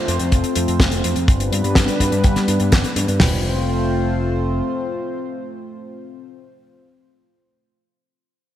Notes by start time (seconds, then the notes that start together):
Already playing: A3 C4 F4 C5
0.08 F2, closed hi-hat
0.19 F2, closed hi-hat
0.32 F1, kick, closed hi-hat
0.44 closed hi-hat
0.56 F2, closed hi-hat
0.68 F2, closed hi-hat
0.80 F1, kick, snare, closed hi-hat
0.92 closed hi-hat
1.04 F2, closed hi-hat
1.16 F2, closed hi-hat
1.28 G1 G3 B3 D4 B4, kick, closed hi-hat
1.40 closed hi-hat
1.52 G2, closed hi-hat
1.64 G2, closed hi-hat
1.75 G1, kick, snare, closed hi-hat
1.88 closed hi-hat
2.00 G2, kick, closed hi-hat
2.12 G2, closed hi-hat
2.24 G1, kick, closed hi-hat
2.36 snare, closed hi-hat
2.48 G2, closed hi-hat
2.60 G2, closed hi-hat
2.72 G1, kick, snare, closed hi-hat
2.84 closed hi-hat
2.96 G2, closed hi-hat
3.08 G2, closed hi-hat
3.20 F1 A3 C4 F4 C5, snare, floor tom, open hi-hat